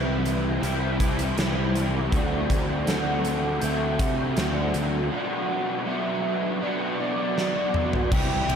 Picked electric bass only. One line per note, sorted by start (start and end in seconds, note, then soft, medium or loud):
0.00 0.58 C2 medium
0.63 1.33 C2 medium
1.37 2.08 C2 medium
2.12 2.46 D2 medium
2.50 2.84 D2 medium
2.88 3.58 D2 medium
3.63 3.97 D2 loud
4.00 4.34 C3 medium
4.37 4.71 D2 medium
4.75 5.09 D2 medium
8.12 8.40 C2 loud
8.49 8.56 C2 loud